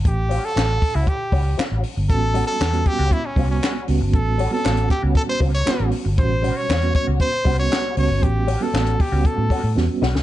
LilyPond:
<<
  \new Staff \with { instrumentName = "Trumpet" } { \time 4/4 \key a \mixolydian \tempo 4 = 117 g'8. a'4 e'16 g'4 r4 | a'8. a'8. g'8 e'16 cis'8 cis'8. r8 | a'8. a'8. g'8 a'16 c''8 cis''8. r8 | c''8. cis''8. cis''8 c''8. cis''8. cis''8 |
g'8. a'8. g'8 a'4 r4 | }
  \new Staff \with { instrumentName = "Clean electric guitar" } { \time 4/4 \key a \mixolydian r8 <g cis' fis'>8 <g cis' fis'>8 r16 <g cis' fis'>16 r8 <g cis' fis'>16 r16 <g cis' fis'>8 r8 | r8 <g cis' fis'>16 r16 <g cis' fis'>16 r8 <g cis' fis'>16 r8 <g cis' fis'>8 <g cis' fis'>8 r8 | r8 <g cis' fis'>16 r16 <g cis' fis'>8 r16 <g cis' fis'>16 r8 <g cis' fis'>8 <g cis' fis'>8 r8 | r8 <g cis' fis'>16 r16 <g cis' fis'>8 r16 <g cis' fis'>16 r8 <g cis' fis'>16 r16 <g cis' fis'>8 r8 |
r8 <g cis' fis'>16 r16 <g cis' fis'>8 r16 <g cis' fis'>16 r8 <g cis' fis'>16 r8. <g cis' fis'>16 r16 | }
  \new Staff \with { instrumentName = "Reed electric piano" } { \time 4/4 \key a \mixolydian r1 | <g b cis' fis'>4 r16 <g b cis' fis'>4 r16 <g b cis' fis'>8. r16 <g b cis' fis'>8~ | <g b cis' fis'>8 r16 <g b c' cis' fis'>8. r16 <g b cis' fis'>4 r16 <g b cis' f' fis'>8. r16 | <b, g cis' fis'>4 r16 <g b cis' fis'>4 r16 <g b cis' fis'>8. r16 <g b cis' fis'>8~ |
<g b cis' fis'>8 r16 <g b cis' fis'>8. r16 <g b cis' fis'>4 r16 <g b cis' fis'>8. r16 | }
  \new Staff \with { instrumentName = "Fingered electric bass" } { \clef bass \time 4/4 \key a \mixolydian a,,8. r16 a,,8 r16 cis,16 r8 cis,8 r16 a,,16 r16 g,,16 | a,,8. r16 e,8 r16 cis,16 r8 c,8 r8 cis,16 g,,16 | a,,8. r16 a,,8 r16 cis,16 r8 cis,8 r16 a,,16 r16 g,,16 | a,,8. r16 e,8 r16 cis,16 r8 c,8 r8 cis,16 g,,16 |
a,,8. r16 a,,8 r16 cis,16 r16 a,16 r16 a,16 e,16 r16 b,,16 cis,16 | }
  \new DrumStaff \with { instrumentName = "Drums" } \drummode { \time 4/4 <hh bd>8 hho8 <hc hh sn>8 <hho bd>8 <hh bd>8 <hho bd>8 <hc hh sn>8 hho8 | <hh bd>8 hho8 <hc hh sn>16 hh16 <hh bd>8 <hh bd>8 <hho bd>8 <hc hh sn>8 hho8 | <hh bd>8 hho8 <hc hh sn>16 hh16 <hh bd>8 <hh bd>8 <hho bd>16 hh16 <hc hh sn>8 hho8 | <hh bd>8 hho8 <hc hh sn>16 hh16 <hh bd>8 <hh bd>8 <hho bd>8 <hc hh sn>8 hho8 |
<hh bd>8 hho8 <hc hh sn>16 hh16 <hho bd>8 <hh bd>8 <hho bd>8 sn8 sn16 sn16 | }
>>